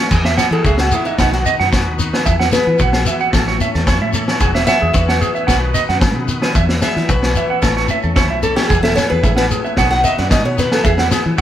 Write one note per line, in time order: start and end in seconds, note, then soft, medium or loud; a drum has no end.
0.00 0.12 A2 medium
0.11 0.37 E2 loud
0.11 0.20 G#4 medium
0.11 1.17 F#5 medium
0.11 1.17 G#5 medium
0.11 1.18 E6 medium
0.11 muted clean electric guitar stroke medium
0.11 kick medium
0.11 crash medium
0.11 shekere medium
0.24 0.33 E5 medium
0.24 snare medium
0.37 0.91 B3 medium
0.37 0.46 F#5 medium
0.37 snare medium
0.37 low agogo medium
0.37 shekere medium
0.51 0.64 E3 medium
0.51 0.61 G#4 medium
0.51 0.65 A4 medium
0.65 0.90 C#2 loud
0.65 1.16 F#4 medium
0.65 0.79 G#4 medium
0.65 0.74 E5 medium
0.65 kick medium
0.65 shekere medium
0.78 0.92 F#4 medium
0.78 muted clean electric guitar stroke medium
0.78 snare medium
0.78 low agogo medium
0.91 1.16 E3 medium
0.91 1.19 B3 medium
0.91 1.07 E4 medium
0.91 1.01 G#4 medium
0.91 shekere medium
1.05 1.18 D#4 medium
1.05 1.14 E5 medium
1.05 shekere soft
1.18 1.44 B1 medium
1.18 1.99 B2 medium
1.18 1.97 D#3 medium
1.18 2.24 B3 medium
1.18 1.33 D#4 medium
1.18 1.45 D#4 medium
1.18 1.70 F#4 medium
1.18 2.23 F#5 medium
1.18 1.28 F#5 medium
1.18 2.25 B5 medium
1.18 2.25 D#6 medium
1.18 kick medium
1.18 snare medium
1.18 low agogo medium
1.18 shekere medium
1.32 1.41 F#4 medium
1.32 snare soft
1.46 1.98 D#4 medium
1.46 1.54 D#5 medium
1.46 shekere medium
1.59 1.88 F#2 medium
1.59 1.68 F#5 medium
1.59 snare soft
1.72 2.23 F#4 medium
1.72 kick medium
1.72 snare medium
1.72 low agogo medium
1.72 shekere medium
1.88 2.12 D#2 medium
1.98 2.23 D#3 medium
1.98 2.23 D#4 medium
1.98 shekere medium
2.13 2.21 B4 medium
2.13 snare medium
2.13 low agogo medium
2.23 3.33 E2 medium
2.23 2.52 E2 loud
2.23 2.34 E5 medium
2.23 3.32 F#5 medium
2.23 3.31 G#5 medium
2.23 3.31 E6 medium
2.23 kick medium
2.23 shekere medium
2.39 2.48 F#5 medium
2.39 snare medium
2.52 2.79 B3 medium
2.52 2.62 G#4 medium
2.52 2.79 B4 medium
2.52 snare medium
2.52 low agogo medium
2.52 shekere loud
2.67 2.79 E3 medium
2.79 3.05 A#1 loud
2.79 3.06 B3 medium
2.79 3.57 F#4 medium
2.79 2.89 F#5 medium
2.79 kick medium
2.79 shekere medium
2.93 3.02 G#4 medium
2.93 snare medium
2.93 low agogo medium
3.05 3.30 E3 medium
3.05 3.34 B3 medium
3.05 3.15 E5 medium
3.05 shekere loud
3.20 3.29 F#5 medium
3.20 shekere soft
3.31 3.59 A1 medium
3.31 4.41 A2 medium
3.31 4.39 E5 medium
3.31 4.39 A5 medium
3.31 4.39 C#6 medium
3.31 kick medium
3.31 snare medium
3.31 low agogo medium
3.31 shekere medium
3.35 3.43 A4 medium
3.47 3.56 C#5 medium
3.47 snare soft
3.60 4.12 C#4 medium
3.60 3.69 E5 medium
3.60 shekere medium
3.74 4.02 E2 medium
3.74 3.83 A4 medium
3.74 snare soft
3.87 4.41 E4 medium
3.87 3.97 C#5 medium
3.87 kick medium
3.87 snare medium
3.87 low agogo medium
3.87 shekere medium
4.02 4.27 A2 medium
4.02 4.09 E5 medium
4.13 4.37 E3 medium
4.13 4.38 C#4 soft
4.13 4.23 A4 medium
4.13 shekere loud
4.28 4.37 C#5 medium
4.28 snare medium
4.28 low agogo medium
4.39 4.66 E1 loud
4.39 5.48 E2 medium
4.39 5.19 E3 soft
4.39 5.45 G#3 medium
4.39 4.66 B3 soft
4.39 4.93 F#4 medium
4.39 4.50 G#4 medium
4.39 6.54 F#5 medium
4.39 5.47 G#5 medium
4.39 5.47 E6 medium
4.39 kick medium
4.39 shekere medium
4.55 4.63 E5 medium
4.55 snare medium
4.67 5.20 B3 medium
4.67 4.93 E5 loud
4.67 4.77 F#5 medium
4.67 snare medium
4.67 low agogo medium
4.67 shekere loud
4.82 4.94 E2 medium
4.82 4.90 G#4 medium
4.93 5.20 E2 loud
4.93 5.45 F#4 medium
4.93 5.71 B4 medium
4.93 5.04 E5 medium
4.93 kick medium
4.93 shekere medium
5.08 5.17 F#5 medium
5.08 snare medium
5.08 low agogo medium
5.20 5.45 E3 medium
5.20 5.47 B3 medium
5.20 5.30 G#4 medium
5.20 shekere medium
5.35 5.43 E5 medium
5.35 shekere soft
5.46 5.74 B1 medium
5.46 6.00 B2 medium
5.46 6.26 D#3 medium
5.46 6.52 B3 medium
5.46 5.73 D#4 medium
5.46 6.53 F#4 medium
5.46 5.56 F#5 medium
5.46 6.54 B5 medium
5.46 6.54 D#6 medium
5.46 kick medium
5.46 snare medium
5.46 low agogo medium
5.46 shekere medium
5.74 6.52 D#4 medium
5.74 5.83 D#5 medium
5.74 shekere medium
5.88 6.15 F#2 medium
5.88 5.97 F#5 medium
5.88 snare soft
6.00 6.28 C#3 medium
6.00 kick medium
6.00 snare medium
6.00 low agogo medium
6.00 shekere medium
6.15 6.41 B2 medium
6.27 6.55 D#3 medium
6.27 shekere medium
6.42 6.51 B4 medium
6.42 snare medium
6.42 low agogo medium
6.52 7.61 E2 medium
6.52 6.81 E2 loud
6.52 6.64 E5 medium
6.52 7.62 F#5 medium
6.52 7.62 G#5 medium
6.52 7.62 E6 medium
6.52 kick medium
6.52 shekere medium
6.69 snare medium
6.82 7.36 B3 medium
6.82 6.91 G#4 medium
6.82 7.08 E5 medium
6.82 snare medium
6.82 low agogo medium
6.82 shekere medium
6.96 7.09 E3 medium
6.96 snare soft
6.96 shekere soft
7.09 7.34 B1 loud
7.09 7.60 F#4 medium
7.09 7.86 B4 medium
7.09 kick loud
7.09 shekere medium
7.23 snare medium
7.23 low agogo medium
7.35 7.60 E3 medium
7.35 7.64 B3 medium
7.35 7.45 E5 medium
7.35 shekere medium
7.50 7.58 F#5 medium
7.61 7.88 A1 medium
7.61 8.71 A2 medium
7.61 7.71 A4 medium
7.61 8.69 E5 medium
7.61 8.69 A5 medium
7.61 8.69 C#6 medium
7.61 kick medium
7.61 snare medium
7.61 low agogo medium
7.61 shekere medium
7.76 7.85 C#5 medium
7.76 snare soft
7.88 8.42 C#4 medium
7.88 7.99 E5 medium
7.88 shekere medium
8.03 8.31 E2 medium
8.03 8.12 A4 medium
8.03 shekere soft
8.16 9.78 E4 medium
8.16 8.24 C#5 medium
8.16 kick medium
8.16 snare medium
8.16 low agogo medium
8.16 shekere medium
8.30 8.56 B1 medium
8.30 8.38 E5 medium
8.43 8.67 E3 medium
8.43 8.67 C#4 soft
8.43 8.56 A4 medium
8.43 8.52 A4 medium
8.43 shekere medium
8.56 8.69 G4 medium
8.56 8.64 C#5 medium
8.56 snare medium
8.56 low agogo medium
8.56 shekere soft
8.68 8.96 E1 loud
8.68 9.22 E2 medium
8.68 8.77 G#4 medium
8.68 8.82 G#4 medium
8.68 9.76 F#5 medium
8.68 9.77 G#5 medium
8.68 9.77 E6 medium
8.68 kick medium
8.68 shekere medium
8.83 8.96 A4 medium
8.83 8.92 E5 medium
8.83 snare medium
8.95 9.77 B3 medium
8.95 9.09 C#5 medium
8.95 muted clean electric guitar stroke medium
8.95 snare medium
8.95 low agogo medium
8.95 shekere medium
9.10 9.23 E2 medium
9.10 9.18 G#4 medium
9.10 9.23 B4 medium
9.23 9.49 A1 medium
9.23 9.50 G#2 medium
9.23 9.37 G#4 medium
9.23 9.32 E5 medium
9.23 kick medium
9.23 shekere medium
9.36 9.46 B4 medium
9.36 9.45 F#5 medium
9.36 snare medium
9.36 low agogo medium
9.49 9.76 A2 medium
9.49 9.59 G#4 medium
9.49 shekere medium
9.65 9.73 E5 medium
9.65 shekere soft
9.76 10.03 B1 loud
9.76 10.58 B2 medium
9.76 10.56 D#3 medium
9.76 10.82 B3 medium
9.76 10.02 D#4 medium
9.76 10.29 F#4 medium
9.76 11.41 F#5 medium
9.76 9.86 F#5 medium
9.76 10.84 B5 medium
9.76 10.84 D#6 medium
9.76 kick medium
9.76 snare medium
9.76 low agogo medium
9.76 shekere medium
9.91 10.03 F#5 medium
9.91 snare soft
10.03 10.56 D#4 medium
10.03 10.13 D#5 medium
10.03 10.17 E5 medium
10.03 shekere medium
10.18 10.45 F#2 medium
10.18 10.31 D5 medium
10.18 10.27 F#5 medium
10.18 snare soft
10.30 10.82 F#4 medium
10.30 10.45 D#5 medium
10.30 kick medium
10.30 snare medium
10.30 low agogo medium
10.30 shekere medium
10.45 10.70 B2 medium
10.45 10.58 C#5 medium
10.57 10.81 D#3 medium
10.57 10.82 D#4 medium
10.57 10.72 B4 medium
10.57 snare soft
10.57 shekere loud
10.72 10.85 A4 medium
10.72 10.80 B4 medium
10.72 snare medium
10.72 low agogo medium
10.83 11.41 E2 medium
10.83 11.10 E2 loud
10.83 10.99 G#4 medium
10.83 10.93 E5 medium
10.83 11.41 G#5 medium
10.83 11.41 E6 medium
10.83 kick medium
10.83 shekere medium
10.98 11.08 E4 medium
10.98 11.07 F#5 medium
10.98 snare medium
11.11 11.41 B3 medium
11.11 11.21 G#4 medium
11.11 snare medium
11.11 low agogo medium
11.11 shekere loud
11.26 11.38 E3 medium
11.38 11.41 F#4 medium